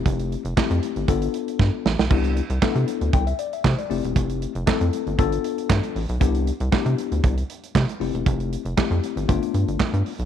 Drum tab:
CC |----------------|x---------------|----------------|----------------|
HH |xxxx-xxxxxxx----|-xxx-xxxxxxx-xox|xxxx-xxxxxxx-xox|xxxx-xxxxxxx-xox|
CP |----x-----------|----x-------x---|----x-------x---|----x-------x---|
SD |----o-------o-oo|----o-------o---|----o-------o---|----o-------o---|
BD |o---o---o---o---|o---o---o---o---|o---o---o---o---|o---o---o---o---|

CC |----------------|
HH |xxxx-xxxxxxx-xox|
CP |----x-------x---|
SD |----o-------o---|
BD |o---o---o---o---|